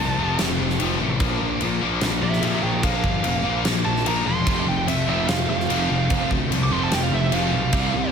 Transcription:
Already playing: distorted electric guitar F2 C3, tonewheel organ F3 C4 G4, lead electric guitar A5
0.00 picked electric bass C2, distorted electric guitar F3 A3 C4
0.17 picked electric bass F1, distorted electric guitar F2 C3 F3 A3 C4
0.37 picked electric bass F1, distorted electric guitar F2 C3 F3 A3 C4, snare, crash
0.59 picked electric bass F1, distorted electric guitar F2 C3
0.70 snare
0.79 picked electric bass F1, distorted electric guitar F2 C3 F3 A3 C4, crash
0.99 picked electric bass A1, distorted electric guitar F2 C3 F3 A3 C4
1.20 picked electric bass A#1, distorted electric guitar A#2 F3 A#3 D4, tonewheel organ A#3 F4 C5, kick, crash
1.41 picked electric bass A#1, distorted electric guitar A#2 F3
1.61 distorted electric guitar A#2 F3 A#3 D4, picked electric bass A#2, crash
1.81 picked electric bass A#1, distorted electric guitar A#2 F3 A#3 D4
2.01 picked electric bass A#1, distorted electric guitar A#2 F3 A#3 D4, snare, crash
2.22 picked electric bass A#1, distorted electric guitar A#2 F3, lead electric guitar G4 E5
2.33 snare
2.42 picked electric bass A#1, distorted electric guitar A#2 F3 A#3 D4, lead electric guitar G4 E5, crash
2.63 picked electric bass A#1, distorted electric guitar A#2 F3 A#3 D4, lead electric guitar A#4 G5
2.83 picked electric bass A#1, distorted electric guitar A#2 F3 A#3 D4, lead electric guitar F5, kick, crash
3.03 picked electric bass G1, distorted electric guitar A#2 F3, kick
3.24 picked electric bass F1, distorted electric guitar A#2 F3 A#3 D4, crash
3.44 picked electric bass A#1, distorted electric guitar A#2 F3 A#3 D4
3.65 picked electric bass A#1, distorted electric guitar A#2 F3 A#3 D4, snare, crash
3.84 picked electric bass A#1, distorted electric guitar A#2 F3, lead electric guitar A5
3.96 snare
4.06 picked electric bass A#1, distorted electric guitar A#2 F3 A#3 D4, lead electric guitar A#5, crash
4.26 picked electric bass E1, distorted electric guitar A#2 F3 A#3 D4, lead electric guitar C6
4.47 picked electric bass F1, distorted electric guitar F2 C3 F3 A3 C4, tonewheel organ F4 G5, kick, crash
4.66 picked electric bass F1, distorted electric guitar F2 C3, lead electric guitar G5
4.88 picked electric bass F2, distorted electric guitar F2 C3 F3 A3 C4, lead electric guitar E5, crash
5.08 picked electric bass F1, distorted electric guitar F2 C3 F3 A3 C4, lead electric guitar E5
5.28 picked electric bass F1, distorted electric guitar F2 C3 F3 A3 C4, lead electric guitar F5, snare, crash
5.48 picked electric bass F1, distorted electric guitar F2 C3, lead electric guitar F5
5.60 snare
5.69 picked electric bass F1, distorted electric guitar F2 C3 F3 A3 C4, crash
5.89 picked electric bass F1, distorted electric guitar F2 C3 F3 A3 C4
6.10 picked electric bass F1, distorted electric guitar F2 C3 F3 A3 C4, kick, crash
6.31 picked electric bass D2, distorted electric guitar F2 C3, kick
6.50 picked electric bass C2, distorted electric guitar F2 C3 F3 A3 C4, crash
6.63 lead electric guitar D6
6.71 picked electric bass F1, distorted electric guitar F2 C3 F3 A3 C4, lead electric guitar C6
6.83 lead electric guitar A5
6.92 picked electric bass F1, distorted electric guitar F2 C3 F3 A3 C4, lead electric guitar G5, snare, crash
7.03 lead electric guitar F5
7.12 picked electric bass F1, distorted electric guitar F2 C3, lead electric guitar E5
7.32 picked electric bass F1, distorted electric guitar F2 C3 F3 A3 C4, lead electric guitar F5, crash
7.53 picked electric bass B1, distorted electric guitar F2 C3 F3 A3 C4
7.72 picked electric bass C2, distorted electric guitar C3 G3 C4 D4, tonewheel organ C4 G4 D5, kick, crash
7.93 picked electric bass C2, distorted electric guitar C3 G3

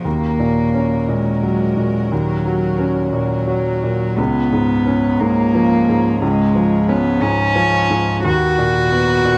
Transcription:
0.05 felt piano D#2, cello A#3, string section C#4 F#4 A#4
0.40 felt piano A#2
0.74 felt piano C#4
1.08 felt piano A#2, cello G#3
1.43 felt piano F#3
1.77 felt piano A#2
2.11 felt piano D#2, cello F#3
2.46 felt piano F#3
2.79 felt piano C#4
3.13 felt piano A#2, cello F#3
3.47 felt piano F#3
3.83 felt piano A#2
4.17 felt piano C#2, cello B3, string section C#4 F4 G#4
4.52 felt piano G#2
4.87 felt piano C#4
5.19 felt piano G#2, cello A#3
5.55 felt piano F3
5.88 felt piano G#2
6.22 felt piano C#2, cello G#3
6.55 felt piano F3
6.89 cello B3, felt piano C#4
7.22 felt piano G#2, cello C#4
7.55 felt piano F3
7.90 felt piano G#2
8.23 felt piano D#2, string section F#4 A#4 B4, cello F#4
8.58 felt piano A#2
8.92 felt piano B3
9.25 felt piano A#2

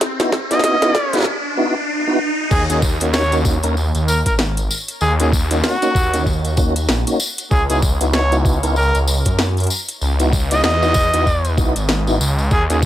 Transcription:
Already playing: riser
0.01 snare, closed hi-hat
0.19 tonewheel organ B3 D#4 E4 F#4, snare, closed hi-hat
0.32 kick, snare
0.51 tonewheel organ B3 D#4 E4 F#4, trumpet D#5, snare, closed hi-hat
0.53 snare
0.59 snare
0.64 trumpet D#5, snare, closed hi-hat
0.82 tonewheel organ B3 D#4 E4 F#4, snare, closed hi-hat
0.95 kick, snare
1.13 tonewheel organ B3 D#4 E4 F#4, snare, closed hi-hat
1.15 snare
1.17 snare
1.19 snare
1.20 snare
1.22 snare
1.24 snare
1.57 tonewheel organ B3 D#4 E4 F#4
2.07 tonewheel organ B3 D#4 E4 F#4
2.51 detuned saw bass D#2, trumpet G#4, kick, crash, tambourine
2.69 detuned saw bass D#2, tonewheel organ A#3 C#4 D#4 F#4, trumpet G#4, closed hi-hat, tambourine
2.82 kick, tambourine
3.00 detuned saw bass D#2, tonewheel organ A#3 C#4 D#4 F#4, closed hi-hat, tambourine
3.13 trumpet C#5, snare, tambourine
3.32 tonewheel organ A#3 C#4 D#4 F#4, closed hi-hat, tambourine
3.45 kick, tambourine
3.63 detuned saw bass D#2, tonewheel organ A#3 C#4 D#4 A#4, closed hi-hat, tambourine
3.77 tambourine
3.95 detuned saw bass D#2, closed hi-hat, tambourine
4.07 trumpet A#4, tambourine
4.25 detuned saw bass G#1, trumpet A#4, kick, closed hi-hat, tambourine
4.39 snare, tambourine
4.57 closed hi-hat, tambourine
4.71 tambourine
4.88 closed hi-hat, tambourine
5.01 detuned saw bass D#2, trumpet G#4, tambourine
5.20 tonewheel organ A#3 C#4 D#4 F#4, trumpet G#4, closed hi-hat, tambourine
5.32 kick, tambourine
5.51 tonewheel organ A#3 C#4 D#4 F#4, closed hi-hat, tambourine
5.64 trumpet F#4, snare, tambourine
5.82 tonewheel organ A#3 C#4 D#4 F#4, snare, closed hi-hat, tambourine
5.95 detuned saw bass D#2, kick, tambourine
6.14 tonewheel organ A#3 C#4 D#4 F#4, closed hi-hat, tambourine
6.26 kick, tambourine
6.44 closed hi-hat, tambourine
6.57 tonewheel organ A#3 C#4 D#4 F#4, kick, tambourine
6.76 closed hi-hat, tambourine
6.89 detuned saw bass A#1, snare, tambourine
7.07 tonewheel organ A#3 C#4 D#4 F#4, closed hi-hat, tambourine
7.20 tambourine
7.38 closed hi-hat, tambourine
7.51 detuned saw bass C#2, trumpet G#4, kick, tambourine
7.69 detuned saw bass C#2, tonewheel organ B3 D#4 E4 F#4, trumpet G#4, closed hi-hat, tambourine
7.82 kick, tambourine
8.01 detuned saw bass C#2, tonewheel organ B3 D#4 E4 F#4, closed hi-hat, tambourine
8.13 trumpet C#5, snare, tambourine
8.32 tonewheel organ B3 D#4 E4 F#4, closed hi-hat, tambourine
8.45 kick, tambourine
8.63 detuned saw bass C#2, tonewheel organ B3 D#4 E4 A#4, closed hi-hat, tambourine
8.76 trumpet A#4, tambourine
8.95 detuned saw bass C#2, closed hi-hat, tambourine
9.08 tambourine
9.25 detuned saw bass F#2, kick, closed hi-hat, tambourine
9.39 snare, tambourine
9.57 closed hi-hat, tambourine
9.60 closed hi-hat
9.64 closed hi-hat
9.67 closed hi-hat, tambourine
9.88 closed hi-hat, tambourine
10.01 detuned saw bass C#2, tambourine
10.19 tonewheel organ B3 D#4 E4 F#4, closed hi-hat, tambourine
10.33 kick, tambourine
10.51 tonewheel organ B3 D#4 E4 F#4, trumpet D#5, closed hi-hat, tambourine
10.64 detuned saw bass E2, trumpet D#5, snare, tambourine
10.82 tonewheel organ B3 D#4 E4 F#4, snare, tambourine
10.94 kick, tambourine
11.13 detuned saw bass E2, tonewheel organ B3 D#4 E4 F#4, closed hi-hat, tambourine
11.26 kick, tambourine
11.45 closed hi-hat, tambourine
11.57 tonewheel organ B3 D#4 E4 F#4, kick, tambourine
11.76 detuned saw bass G#1, closed hi-hat, tambourine
11.89 snare, tambourine
12.07 tonewheel organ B3 D#4 E4 F#4, tambourine
12.20 detuned saw bass C#2, tambourine
12.38 tambourine
12.51 detuned saw bass D#2, trumpet G#4, kick, tambourine
12.70 detuned saw bass D#2, tonewheel organ A#3 C#4 D#4 F#4, trumpet G#4, closed hi-hat, tambourine
12.82 tambourine

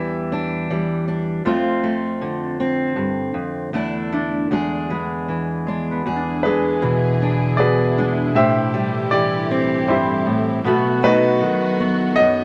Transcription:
Already playing: steel-string acoustic guitar E2 E3 G3 D4 G4, harp E4, grand piano G4 B4 E5
0.32 steel-string acoustic guitar D4
0.70 steel-string acoustic guitar E3 G3
1.08 steel-string acoustic guitar D4
1.45 steel-string acoustic guitar F2 A3 C4 F4, harp F4
1.83 steel-string acoustic guitar A3
2.21 steel-string acoustic guitar D3
2.60 steel-string acoustic guitar C4
2.96 steel-string acoustic guitar G2
3.34 steel-string acoustic guitar F2
3.73 steel-string acoustic guitar E2 A3 D4 E4
4.12 steel-string acoustic guitar A3, harp D4
4.51 steel-string acoustic guitar E2 G#3 D4 G#4
4.90 steel-string acoustic guitar G#3, harp B3
5.28 steel-string acoustic guitar E3
5.67 harp G#3, steel-string acoustic guitar D4
5.91 harp B3
6.03 steel-string acoustic guitar E2 G#4, string section D3 B3 E4 G#4
6.16 harp D4
6.43 steel-string acoustic guitar G#3, grand piano D4 G#4 B4
6.82 harp B2, steel-string acoustic guitar E3
7.22 steel-string acoustic guitar D4
7.57 steel-string acoustic guitar B2, grand piano G#4 B4 D5
7.97 steel-string acoustic guitar G#3, harp D4
8.34 steel-string acoustic guitar A2 G4, string section E3 A3 G4, grand piano G4 C5 E5
8.74 steel-string acoustic guitar G3
9.11 steel-string acoustic guitar E3, grand piano G4 D5
9.51 steel-string acoustic guitar C4
9.88 steel-string acoustic guitar G2, grand piano E4 G4 C5, harp E4
10.26 steel-string acoustic guitar A2
10.64 steel-string acoustic guitar B2 A3 B3 F#4, string section F#3 B3 F#4, harp B3
11.03 steel-string acoustic guitar A3, grand piano D#4 F#4 B4
11.41 steel-string acoustic guitar D#3
11.80 steel-string acoustic guitar B3
12.16 steel-string acoustic guitar F#2, grand piano D#5

